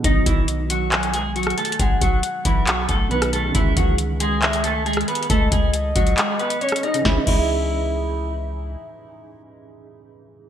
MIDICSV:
0, 0, Header, 1, 6, 480
1, 0, Start_track
1, 0, Key_signature, 4, "minor"
1, 0, Tempo, 437956
1, 48, Time_signature, 4, 2, 24, 8
1, 11501, End_track
2, 0, Start_track
2, 0, Title_t, "Soft synth lead"
2, 0, Program_c, 0, 80
2, 1006, Note_on_c, 0, 80, 101
2, 1458, Note_off_c, 0, 80, 0
2, 1964, Note_on_c, 0, 78, 122
2, 3362, Note_off_c, 0, 78, 0
2, 4846, Note_on_c, 0, 76, 96
2, 5298, Note_off_c, 0, 76, 0
2, 5809, Note_on_c, 0, 75, 111
2, 7204, Note_off_c, 0, 75, 0
2, 7247, Note_on_c, 0, 73, 85
2, 7475, Note_off_c, 0, 73, 0
2, 7490, Note_on_c, 0, 75, 91
2, 7717, Note_off_c, 0, 75, 0
2, 7729, Note_on_c, 0, 76, 86
2, 7862, Note_off_c, 0, 76, 0
2, 7968, Note_on_c, 0, 76, 97
2, 9124, Note_off_c, 0, 76, 0
2, 11501, End_track
3, 0, Start_track
3, 0, Title_t, "Clean electric guitar"
3, 0, Program_c, 1, 27
3, 48, Note_on_c, 1, 63, 97
3, 56, Note_on_c, 1, 75, 77
3, 244, Note_off_c, 1, 63, 0
3, 249, Note_off_c, 1, 75, 0
3, 288, Note_on_c, 1, 64, 83
3, 297, Note_on_c, 1, 52, 61
3, 484, Note_off_c, 1, 64, 0
3, 489, Note_off_c, 1, 52, 0
3, 769, Note_on_c, 1, 66, 75
3, 778, Note_on_c, 1, 54, 58
3, 964, Note_off_c, 1, 66, 0
3, 970, Note_off_c, 1, 54, 0
3, 1008, Note_on_c, 1, 66, 89
3, 1017, Note_on_c, 1, 54, 74
3, 1204, Note_off_c, 1, 66, 0
3, 1209, Note_off_c, 1, 54, 0
3, 1247, Note_on_c, 1, 68, 81
3, 1256, Note_on_c, 1, 56, 61
3, 1444, Note_off_c, 1, 68, 0
3, 1449, Note_off_c, 1, 56, 0
3, 1488, Note_on_c, 1, 66, 81
3, 1497, Note_on_c, 1, 54, 69
3, 1684, Note_off_c, 1, 66, 0
3, 1689, Note_off_c, 1, 54, 0
3, 1727, Note_on_c, 1, 69, 81
3, 1736, Note_on_c, 1, 57, 59
3, 1924, Note_off_c, 1, 69, 0
3, 1929, Note_off_c, 1, 57, 0
3, 1968, Note_on_c, 1, 68, 87
3, 1977, Note_on_c, 1, 56, 79
3, 2164, Note_off_c, 1, 68, 0
3, 2169, Note_off_c, 1, 56, 0
3, 2208, Note_on_c, 1, 66, 81
3, 2217, Note_on_c, 1, 54, 65
3, 2404, Note_off_c, 1, 66, 0
3, 2409, Note_off_c, 1, 54, 0
3, 2687, Note_on_c, 1, 64, 78
3, 2696, Note_on_c, 1, 52, 68
3, 2883, Note_off_c, 1, 64, 0
3, 2889, Note_off_c, 1, 52, 0
3, 2927, Note_on_c, 1, 66, 97
3, 2936, Note_on_c, 1, 54, 69
3, 3123, Note_off_c, 1, 66, 0
3, 3129, Note_off_c, 1, 54, 0
3, 3167, Note_on_c, 1, 69, 88
3, 3176, Note_on_c, 1, 57, 69
3, 3364, Note_off_c, 1, 69, 0
3, 3369, Note_off_c, 1, 57, 0
3, 3408, Note_on_c, 1, 71, 88
3, 3417, Note_on_c, 1, 59, 69
3, 3604, Note_off_c, 1, 71, 0
3, 3609, Note_off_c, 1, 59, 0
3, 3649, Note_on_c, 1, 69, 83
3, 3657, Note_on_c, 1, 57, 67
3, 3844, Note_off_c, 1, 69, 0
3, 3849, Note_off_c, 1, 57, 0
3, 3888, Note_on_c, 1, 64, 110
3, 3897, Note_on_c, 1, 52, 76
3, 4084, Note_off_c, 1, 64, 0
3, 4089, Note_off_c, 1, 52, 0
3, 4128, Note_on_c, 1, 66, 91
3, 4137, Note_on_c, 1, 54, 67
3, 4324, Note_off_c, 1, 66, 0
3, 4329, Note_off_c, 1, 54, 0
3, 4609, Note_on_c, 1, 68, 93
3, 4617, Note_on_c, 1, 56, 72
3, 4804, Note_off_c, 1, 68, 0
3, 4809, Note_off_c, 1, 56, 0
3, 4849, Note_on_c, 1, 68, 99
3, 4858, Note_on_c, 1, 56, 74
3, 5045, Note_off_c, 1, 68, 0
3, 5050, Note_off_c, 1, 56, 0
3, 5089, Note_on_c, 1, 69, 80
3, 5098, Note_on_c, 1, 57, 58
3, 5284, Note_off_c, 1, 69, 0
3, 5290, Note_off_c, 1, 57, 0
3, 5328, Note_on_c, 1, 68, 96
3, 5336, Note_on_c, 1, 56, 68
3, 5524, Note_off_c, 1, 68, 0
3, 5529, Note_off_c, 1, 56, 0
3, 5568, Note_on_c, 1, 71, 79
3, 5577, Note_on_c, 1, 59, 58
3, 5764, Note_off_c, 1, 71, 0
3, 5769, Note_off_c, 1, 59, 0
3, 5807, Note_on_c, 1, 69, 105
3, 5816, Note_on_c, 1, 57, 87
3, 6003, Note_off_c, 1, 69, 0
3, 6008, Note_off_c, 1, 57, 0
3, 6047, Note_on_c, 1, 68, 83
3, 6056, Note_on_c, 1, 56, 64
3, 6243, Note_off_c, 1, 68, 0
3, 6249, Note_off_c, 1, 56, 0
3, 6528, Note_on_c, 1, 66, 86
3, 6536, Note_on_c, 1, 54, 68
3, 6724, Note_off_c, 1, 66, 0
3, 6729, Note_off_c, 1, 54, 0
3, 6768, Note_on_c, 1, 68, 80
3, 6777, Note_on_c, 1, 56, 71
3, 6964, Note_off_c, 1, 68, 0
3, 6969, Note_off_c, 1, 56, 0
3, 7008, Note_on_c, 1, 71, 83
3, 7017, Note_on_c, 1, 59, 68
3, 7204, Note_off_c, 1, 71, 0
3, 7209, Note_off_c, 1, 59, 0
3, 7247, Note_on_c, 1, 73, 78
3, 7257, Note_on_c, 1, 61, 61
3, 7444, Note_off_c, 1, 73, 0
3, 7449, Note_off_c, 1, 61, 0
3, 7489, Note_on_c, 1, 75, 81
3, 7498, Note_on_c, 1, 63, 65
3, 7684, Note_off_c, 1, 75, 0
3, 7690, Note_off_c, 1, 63, 0
3, 7729, Note_on_c, 1, 64, 84
3, 7862, Note_off_c, 1, 64, 0
3, 7969, Note_on_c, 1, 64, 86
3, 9124, Note_off_c, 1, 64, 0
3, 11501, End_track
4, 0, Start_track
4, 0, Title_t, "Grand piano"
4, 0, Program_c, 2, 0
4, 0, Note_on_c, 2, 47, 67
4, 27, Note_on_c, 2, 51, 65
4, 68, Note_on_c, 2, 54, 64
4, 109, Note_on_c, 2, 63, 77
4, 271, Control_c, 2, 64, 127
4, 3333, Note_off_c, 2, 47, 0
4, 3354, Note_off_c, 2, 51, 0
4, 3374, Note_off_c, 2, 54, 0
4, 3381, Note_on_c, 2, 47, 50
4, 3395, Note_off_c, 2, 63, 0
4, 3402, Note_on_c, 2, 51, 47
4, 3423, Note_on_c, 2, 54, 45
4, 3444, Note_on_c, 2, 63, 56
4, 3823, Note_on_c, 2, 49, 70
4, 3864, Note_on_c, 2, 52, 65
4, 3875, Note_off_c, 2, 47, 0
4, 3885, Note_off_c, 2, 51, 0
4, 3895, Note_off_c, 2, 54, 0
4, 3903, Control_c, 2, 64, 0
4, 3905, Note_on_c, 2, 56, 68
4, 3906, Note_off_c, 2, 63, 0
4, 3946, Note_on_c, 2, 51, 77
4, 4123, Control_c, 2, 64, 127
4, 7587, Note_off_c, 2, 49, 0
4, 7604, Note_on_c, 2, 49, 83
4, 7669, Note_off_c, 2, 52, 0
4, 7685, Note_on_c, 2, 52, 80
4, 7693, Note_off_c, 2, 56, 0
4, 7713, Note_off_c, 2, 51, 0
4, 7743, Control_c, 2, 64, 0
4, 7768, Note_on_c, 2, 56, 81
4, 7795, Note_off_c, 2, 49, 0
4, 7839, Note_off_c, 2, 52, 0
4, 7845, Note_on_c, 2, 49, 81
4, 7850, Note_on_c, 2, 63, 94
4, 7883, Note_off_c, 2, 56, 0
4, 7906, Control_c, 2, 64, 127
4, 7927, Note_off_c, 2, 63, 0
4, 7927, Note_on_c, 2, 52, 75
4, 8009, Note_on_c, 2, 56, 75
4, 8091, Note_on_c, 2, 64, 91
4, 11501, Note_off_c, 2, 49, 0
4, 11501, Note_off_c, 2, 52, 0
4, 11501, Note_off_c, 2, 56, 0
4, 11501, Note_off_c, 2, 64, 0
4, 11501, End_track
5, 0, Start_track
5, 0, Title_t, "808-style bass"
5, 0, Program_c, 3, 38
5, 48, Note_on_c, 3, 35, 110
5, 278, Note_off_c, 3, 35, 0
5, 287, Note_on_c, 3, 35, 102
5, 1683, Note_off_c, 3, 35, 0
5, 1968, Note_on_c, 3, 35, 110
5, 2198, Note_off_c, 3, 35, 0
5, 2207, Note_on_c, 3, 35, 108
5, 2438, Note_off_c, 3, 35, 0
5, 2687, Note_on_c, 3, 35, 105
5, 3148, Note_off_c, 3, 35, 0
5, 3168, Note_on_c, 3, 35, 105
5, 3859, Note_off_c, 3, 35, 0
5, 3888, Note_on_c, 3, 37, 108
5, 4118, Note_off_c, 3, 37, 0
5, 4127, Note_on_c, 3, 37, 104
5, 5523, Note_off_c, 3, 37, 0
5, 5808, Note_on_c, 3, 37, 114
5, 6038, Note_off_c, 3, 37, 0
5, 6047, Note_on_c, 3, 37, 110
5, 6508, Note_off_c, 3, 37, 0
5, 6527, Note_on_c, 3, 37, 108
5, 6758, Note_off_c, 3, 37, 0
5, 7728, Note_on_c, 3, 37, 103
5, 7862, Note_off_c, 3, 37, 0
5, 7968, Note_on_c, 3, 37, 112
5, 9604, Note_off_c, 3, 37, 0
5, 11501, End_track
6, 0, Start_track
6, 0, Title_t, "Drums"
6, 48, Note_on_c, 9, 36, 111
6, 48, Note_on_c, 9, 42, 88
6, 157, Note_off_c, 9, 36, 0
6, 157, Note_off_c, 9, 42, 0
6, 287, Note_on_c, 9, 36, 94
6, 289, Note_on_c, 9, 42, 82
6, 397, Note_off_c, 9, 36, 0
6, 398, Note_off_c, 9, 42, 0
6, 527, Note_on_c, 9, 42, 69
6, 636, Note_off_c, 9, 42, 0
6, 767, Note_on_c, 9, 42, 78
6, 877, Note_off_c, 9, 42, 0
6, 1008, Note_on_c, 9, 42, 49
6, 1009, Note_on_c, 9, 39, 120
6, 1118, Note_off_c, 9, 39, 0
6, 1118, Note_off_c, 9, 42, 0
6, 1128, Note_on_c, 9, 42, 79
6, 1238, Note_off_c, 9, 42, 0
6, 1244, Note_on_c, 9, 42, 82
6, 1354, Note_off_c, 9, 42, 0
6, 1488, Note_on_c, 9, 42, 45
6, 1568, Note_off_c, 9, 42, 0
6, 1568, Note_on_c, 9, 42, 52
6, 1608, Note_on_c, 9, 37, 92
6, 1648, Note_off_c, 9, 42, 0
6, 1648, Note_on_c, 9, 42, 56
6, 1718, Note_off_c, 9, 37, 0
6, 1728, Note_off_c, 9, 42, 0
6, 1728, Note_on_c, 9, 42, 65
6, 1808, Note_off_c, 9, 42, 0
6, 1808, Note_on_c, 9, 42, 69
6, 1888, Note_off_c, 9, 42, 0
6, 1888, Note_on_c, 9, 42, 76
6, 1967, Note_off_c, 9, 42, 0
6, 1967, Note_on_c, 9, 42, 88
6, 1968, Note_on_c, 9, 36, 113
6, 2077, Note_off_c, 9, 36, 0
6, 2077, Note_off_c, 9, 42, 0
6, 2207, Note_on_c, 9, 36, 97
6, 2208, Note_on_c, 9, 42, 87
6, 2317, Note_off_c, 9, 36, 0
6, 2318, Note_off_c, 9, 42, 0
6, 2446, Note_on_c, 9, 42, 79
6, 2555, Note_off_c, 9, 42, 0
6, 2686, Note_on_c, 9, 42, 79
6, 2687, Note_on_c, 9, 36, 98
6, 2796, Note_off_c, 9, 42, 0
6, 2797, Note_off_c, 9, 36, 0
6, 2928, Note_on_c, 9, 39, 117
6, 2930, Note_on_c, 9, 42, 75
6, 3038, Note_off_c, 9, 39, 0
6, 3040, Note_off_c, 9, 42, 0
6, 3164, Note_on_c, 9, 42, 73
6, 3168, Note_on_c, 9, 36, 96
6, 3273, Note_off_c, 9, 42, 0
6, 3278, Note_off_c, 9, 36, 0
6, 3408, Note_on_c, 9, 42, 45
6, 3517, Note_off_c, 9, 42, 0
6, 3528, Note_on_c, 9, 37, 95
6, 3528, Note_on_c, 9, 42, 75
6, 3637, Note_off_c, 9, 37, 0
6, 3637, Note_off_c, 9, 42, 0
6, 3650, Note_on_c, 9, 42, 68
6, 3760, Note_off_c, 9, 42, 0
6, 3888, Note_on_c, 9, 36, 108
6, 3888, Note_on_c, 9, 42, 85
6, 3997, Note_off_c, 9, 36, 0
6, 3997, Note_off_c, 9, 42, 0
6, 4127, Note_on_c, 9, 36, 94
6, 4128, Note_on_c, 9, 42, 81
6, 4236, Note_off_c, 9, 36, 0
6, 4238, Note_off_c, 9, 42, 0
6, 4366, Note_on_c, 9, 42, 72
6, 4476, Note_off_c, 9, 42, 0
6, 4606, Note_on_c, 9, 42, 81
6, 4716, Note_off_c, 9, 42, 0
6, 4848, Note_on_c, 9, 42, 45
6, 4849, Note_on_c, 9, 39, 120
6, 4958, Note_off_c, 9, 39, 0
6, 4958, Note_off_c, 9, 42, 0
6, 4968, Note_on_c, 9, 42, 79
6, 5078, Note_off_c, 9, 42, 0
6, 5084, Note_on_c, 9, 42, 81
6, 5193, Note_off_c, 9, 42, 0
6, 5328, Note_on_c, 9, 42, 45
6, 5408, Note_off_c, 9, 42, 0
6, 5408, Note_on_c, 9, 42, 52
6, 5448, Note_on_c, 9, 37, 94
6, 5488, Note_off_c, 9, 42, 0
6, 5488, Note_on_c, 9, 42, 58
6, 5557, Note_off_c, 9, 37, 0
6, 5568, Note_off_c, 9, 42, 0
6, 5568, Note_on_c, 9, 42, 63
6, 5647, Note_off_c, 9, 42, 0
6, 5647, Note_on_c, 9, 42, 70
6, 5727, Note_off_c, 9, 42, 0
6, 5727, Note_on_c, 9, 42, 75
6, 5807, Note_off_c, 9, 42, 0
6, 5807, Note_on_c, 9, 42, 89
6, 5808, Note_on_c, 9, 36, 111
6, 5917, Note_off_c, 9, 36, 0
6, 5917, Note_off_c, 9, 42, 0
6, 6047, Note_on_c, 9, 36, 91
6, 6048, Note_on_c, 9, 42, 89
6, 6156, Note_off_c, 9, 36, 0
6, 6158, Note_off_c, 9, 42, 0
6, 6286, Note_on_c, 9, 42, 78
6, 6395, Note_off_c, 9, 42, 0
6, 6527, Note_on_c, 9, 36, 98
6, 6528, Note_on_c, 9, 42, 81
6, 6637, Note_off_c, 9, 36, 0
6, 6637, Note_off_c, 9, 42, 0
6, 6648, Note_on_c, 9, 42, 49
6, 6758, Note_off_c, 9, 42, 0
6, 6769, Note_on_c, 9, 39, 120
6, 6771, Note_on_c, 9, 42, 73
6, 6878, Note_off_c, 9, 39, 0
6, 6880, Note_off_c, 9, 42, 0
6, 7008, Note_on_c, 9, 42, 46
6, 7118, Note_off_c, 9, 42, 0
6, 7128, Note_on_c, 9, 42, 75
6, 7237, Note_off_c, 9, 42, 0
6, 7248, Note_on_c, 9, 42, 47
6, 7328, Note_off_c, 9, 42, 0
6, 7328, Note_on_c, 9, 42, 64
6, 7368, Note_on_c, 9, 37, 92
6, 7408, Note_off_c, 9, 42, 0
6, 7408, Note_on_c, 9, 42, 75
6, 7477, Note_off_c, 9, 37, 0
6, 7488, Note_off_c, 9, 42, 0
6, 7488, Note_on_c, 9, 42, 40
6, 7598, Note_off_c, 9, 42, 0
6, 7608, Note_on_c, 9, 42, 70
6, 7717, Note_off_c, 9, 42, 0
6, 7728, Note_on_c, 9, 36, 107
6, 7728, Note_on_c, 9, 38, 86
6, 7837, Note_off_c, 9, 38, 0
6, 7838, Note_off_c, 9, 36, 0
6, 7968, Note_on_c, 9, 36, 108
6, 7968, Note_on_c, 9, 49, 88
6, 8078, Note_off_c, 9, 36, 0
6, 8078, Note_off_c, 9, 49, 0
6, 11501, End_track
0, 0, End_of_file